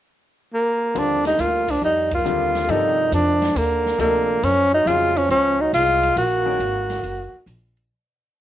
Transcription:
0.54 1.00 A#3 medium
0.94 1.37 D#2 medium
0.94 1.62 D3 soft
0.94 1.26 F3 medium
0.94 1.62 G3 soft
0.94 1.62 C4 soft
0.94 1.62 F4 soft
0.94 1.62 A#4 soft
0.94 ride soft
0.98 1.26 D4 medium
1.25 1.41 G3 medium
1.25 1.42 D#4 medium
1.25 snare soft
1.25 ride soft
1.39 1.81 D2 medium
1.39 1.71 A#3 medium
1.39 1.72 F4 medium
1.39 hi-hat pedal soft
1.39 ride medium
1.68 1.83 F3 medium
1.68 1.83 D4 medium
1.68 kick soft
1.68 ride medium
1.82 2.24 F2 medium
1.82 2.10 G3 medium
1.82 2.11 D#4 medium
2.11 2.70 A#3 medium
2.11 2.72 F4 medium
2.11 kick medium
2.11 ride medium
2.25 2.67 D#2 medium
2.25 2.92 D3 medium
2.25 2.92 G3 soft
2.25 2.92 C4 soft
2.25 2.93 F4 soft
2.25 2.92 A#4 medium
2.25 hi-hat pedal medium
2.55 snare soft
2.55 ride soft
2.68 3.11 G2 medium
2.68 3.36 C3 medium
2.68 3.36 F3 soft
2.68 3.11 G3 medium
2.68 3.35 A#3 soft
2.68 3.36 D#4 soft
2.68 3.13 D#4 medium
2.68 3.36 A4 medium
2.68 ride soft
3.11 3.54 F2 medium
3.11 3.58 F3 medium
3.11 3.59 D4 medium
3.11 hi-hat pedal soft
3.11 ride medium
3.42 snare soft
3.42 ride soft
3.55 3.98 D#2 medium
3.55 4.00 D3 medium
3.55 4.00 A#3 medium
3.55 ride soft
3.86 snare soft
3.98 4.41 D2 medium
3.98 4.42 C3 soft
3.98 4.45 D3 medium
3.98 4.42 F3 soft
3.98 4.42 A#3 soft
3.98 4.46 A#3 medium
3.98 4.43 A4 medium
3.98 4.42 D#5 soft
3.98 hi-hat pedal soft
3.98 ride medium
4.43 4.85 F#2 medium
4.43 4.71 F3 medium
4.43 4.73 C#4 medium
4.43 ride medium
4.72 4.88 F#3 medium
4.72 4.89 D#4 loud
4.86 5.28 F2 medium
4.86 5.13 C#3 soft
4.86 5.13 F#3 soft
4.86 5.17 G#3 medium
4.86 5.13 C4 soft
4.86 5.14 F4 soft
4.86 5.19 F4 medium
4.86 5.14 G#4 soft
4.86 hi-hat pedal medium
4.86 ride medium
5.16 5.30 F3 medium
5.16 5.31 C#4 medium
5.16 ride soft
5.29 5.71 C#2 medium
5.29 5.63 F3 medium
5.29 5.62 C#4 medium
5.29 ride soft
5.61 5.74 F#3 medium
5.61 5.74 D#4 medium
5.73 6.15 C2 medium
5.73 6.14 G#3 medium
5.73 6.14 F4 loud
5.73 hi-hat pedal medium
5.73 ride medium
6.03 ride soft
6.16 6.58 A#1 medium
6.16 7.43 A#3 medium
6.16 7.44 F#4 medium
6.16 ride medium
6.45 6.58 D#3 medium
6.45 6.58 G#3 medium
6.45 6.59 C#4 medium
6.45 6.59 F#4 medium
6.45 6.59 A#4 medium
6.59 7.02 G#1 medium
6.59 hi-hat pedal soft
6.59 ride medium
6.89 snare soft
6.89 ride soft
7.03 7.31 F#1 medium
7.03 ride medium
7.33 muted upright bass stroke soft
7.46 7.89 A#1 medium
7.46 hi-hat pedal soft
7.46 ride medium
7.77 ride soft

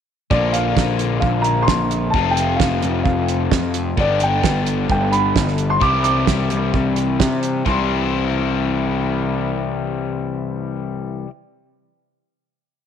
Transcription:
0.31 0.72 A#1 medium
0.31 2.12 A#2 medium
0.31 2.12 D3 medium
0.31 2.13 A#3 medium
0.31 2.13 D4 medium
0.31 2.14 F4 medium
0.31 0.54 D5 medium
0.31 kick loud
0.52 1.18 F5 medium
0.52 closed hi-hat medium
0.76 1.18 A#1 medium
0.76 kick loud
0.76 snare medium
0.99 closed hi-hat medium
1.20 1.64 A#1 medium
1.20 1.44 F5 medium
1.20 kick medium
1.42 1.67 A#5 medium
1.42 closed hi-hat medium
1.62 2.12 C6 medium
1.68 2.10 A#1 loud
1.68 kick loud
1.68 snare loud
1.91 closed hi-hat medium
2.10 2.35 A5 medium
2.10 kick medium
2.14 2.56 F1 medium
2.14 3.96 F2 medium
2.14 3.96 C3 medium
2.14 3.97 F3 medium
2.14 3.97 A3 medium
2.14 3.97 C4 medium
2.14 3.98 F4 loud
2.31 2.57 G5 medium
2.37 closed hi-hat medium
2.56 2.80 F1 medium
2.56 3.02 F5 medium
2.56 kick medium
2.60 snare loud
2.82 3.04 F1 medium
2.82 closed hi-hat medium
3.03 3.47 F1 medium
3.03 3.69 F5 medium
3.03 kick loud
3.28 closed hi-hat medium
3.51 3.93 F2 medium
3.51 kick loud
3.51 snare loud
3.74 closed hi-hat medium
3.97 4.40 G1 loud
3.97 5.80 G2 medium
3.97 5.80 D3 medium
3.97 5.81 G3 medium
3.97 5.81 B3 loud
3.97 5.82 D4 loud
3.97 5.83 G4 loud
3.97 4.22 D5 medium
3.97 kick loud
4.20 4.90 G5 medium
4.20 closed hi-hat medium
4.44 4.86 G1 loud
4.44 kick medium
4.44 snare loud
4.67 closed hi-hat medium
4.90 5.32 G1 medium
4.90 5.12 G5 medium
4.90 kick loud
5.12 5.72 B5 medium
5.12 closed hi-hat medium
5.36 5.78 G1 loud
5.36 kick loud
5.36 snare loud
5.48 snare soft
5.58 closed hi-hat medium
5.70 5.82 C6 medium
5.80 6.24 C2 medium
5.80 7.64 C3 medium
5.80 7.64 E3 medium
5.80 7.65 G3 medium
5.80 7.65 E4 medium
5.80 7.66 G4 loud
5.80 6.02 D6 medium
5.80 kick loud
6.03 6.69 D6 medium
6.03 closed hi-hat medium
6.27 6.49 C2 medium
6.27 kick medium
6.27 snare loud
6.50 6.72 C2 medium
6.50 closed hi-hat medium
6.74 7.16 C2 medium
6.74 kick medium
6.96 closed hi-hat medium
7.20 7.62 C3 medium
7.20 kick medium
7.20 snare loud
7.43 closed hi-hat medium
7.65 11.24 C2 medium
7.65 11.26 C3 medium
7.65 11.28 E3 loud
7.65 11.29 G3 medium
7.65 11.30 C4 medium
7.65 11.25 C6 medium
7.65 kick medium
7.69 11.31 E4 loud

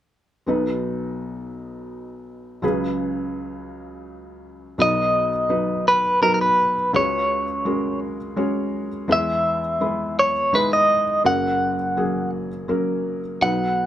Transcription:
0.47 2.59 B1 soft
0.47 2.59 B2 soft
0.47 2.58 F#3 soft
0.47 2.59 B3 soft
0.47 2.59 D#4 soft
0.47 2.60 B4 soft
2.62 4.75 C#2 soft
2.62 4.75 C#3 soft
2.62 4.74 F#3 soft
2.62 4.74 C#4 soft
2.62 4.75 G#4 soft
2.62 4.75 B4 medium
4.78 6.90 B1 soft
4.78 6.91 B2 soft
4.78 5.29 F#3 soft
4.78 5.30 B3 soft
4.78 5.30 D#4 soft
4.78 5.30 B4 medium
4.78 5.88 D#5 medium
5.49 6.01 F#3 soft
5.49 6.01 B3 soft
5.49 6.01 D#4 soft
5.49 6.01 B4 soft
5.88 6.21 B4 medium
6.21 6.73 F#3 soft
6.21 6.73 B3 soft
6.21 6.73 D#4 soft
6.21 6.33 A#4 medium
6.21 6.73 B4 medium
6.34 6.41 A#4 soft
6.41 6.91 B4 medium
6.93 9.05 C#2 soft
6.93 9.05 C#3 soft
6.93 7.44 G#3 soft
6.93 7.45 C#4 soft
6.93 7.45 F#4 soft
6.93 7.45 B4 medium
6.93 7.99 C#5 medium
7.65 8.16 G#3 soft
7.65 8.17 C#4 soft
7.65 8.17 F#4 soft
7.65 8.17 A#4 soft
8.36 8.88 G#3 soft
8.36 8.88 C#4 medium
8.36 8.88 F#4 soft
8.36 8.88 C#5 medium
9.08 11.21 E2 soft
9.08 11.21 E3 soft
9.08 9.59 G#3 medium
9.08 9.60 B3 soft
9.08 9.60 E4 soft
9.08 9.60 B4 medium
9.12 10.19 E5 medium
9.80 10.32 G#3 soft
9.80 10.32 B3 soft
9.80 10.32 E4 soft
9.80 10.32 B4 soft
10.19 10.55 C#5 medium
10.53 11.04 G#3 soft
10.53 11.04 D#4 soft
10.53 11.04 E4 soft
10.53 11.04 B4 medium
10.53 10.71 B4 medium
10.73 11.22 D#5 medium
11.24 13.37 F#1 soft
11.24 13.37 F#2 soft
11.24 11.75 F#3 soft
11.24 11.76 A#3 soft
11.24 11.76 C#4 soft
11.24 11.76 A#4 medium
11.24 12.30 F#5 medium
11.97 12.48 F#3 soft
11.97 12.48 A#3 soft
11.97 12.48 C#4 soft
11.97 12.48 G#4 soft
12.68 13.20 F#3 medium
12.68 13.20 A#3 soft
12.68 13.20 C#4 soft
12.68 13.20 A#4 medium
13.41 13.86 B1 soft
13.41 13.86 B2 soft
13.41 13.86 F#3 soft
13.41 13.86 B3 soft
13.41 13.86 D#4 soft
13.41 13.86 B4 medium
13.41 13.86 F#5 medium

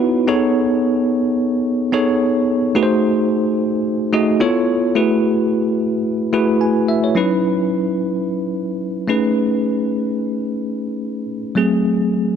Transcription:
0.00 0.27 B3 medium
0.00 0.28 D#4 medium
0.00 0.30 E4 medium
0.00 0.30 F#4 medium
0.00 0.28 B4 loud
0.00 0.29 C#5 loud
0.27 1.16 B3 loud
0.27 1.16 D#4 medium
0.27 1.17 G#4 medium
0.27 1.17 A4 medium
0.27 1.17 C#5 loud
1.93 2.60 B3 medium
1.93 2.60 D#4 medium
1.93 2.60 G#4 medium
1.93 2.60 A4 medium
1.93 2.60 C#5 loud
2.75 3.64 A3 medium
2.75 3.64 D#4 medium
2.75 3.64 F#4 medium
2.75 3.64 G#4 medium
2.75 2.83 B4 medium
2.83 3.68 C5 loud
4.13 4.40 A3 medium
4.13 4.40 D#4 medium
4.13 4.41 F#4 medium
4.13 4.41 G#4 medium
4.13 4.41 D#5 loud
4.40 4.86 B3 loud
4.40 4.86 E4 medium
4.40 4.86 F4 medium
4.40 4.86 A4 medium
4.40 4.86 C#5 loud
4.95 5.84 A3 medium
4.95 5.84 E4 medium
4.95 5.84 F#4 medium
4.95 5.85 G#4 medium
4.95 5.85 B4 medium
6.33 7.00 A3 medium
6.33 7.00 E4 medium
6.33 7.00 F#4 medium
6.33 7.01 G#4 medium
6.33 7.01 B4 loud
6.61 6.87 G#5 medium
6.88 7.03 E5 medium
7.04 7.30 C#5 medium
7.15 9.04 F#3 medium
7.15 9.04 C#4 medium
7.15 9.05 D#4 medium
7.15 9.05 E4 medium
7.15 9.05 B4 medium
9.08 11.24 A3 medium
9.08 11.24 C#4 medium
9.08 11.25 D#4 medium
9.08 11.25 G#4 medium
9.08 11.25 B4 medium
11.55 12.36 F#3 medium
11.55 12.36 A3 medium
11.55 12.36 C4 medium
11.55 12.36 G#4 medium

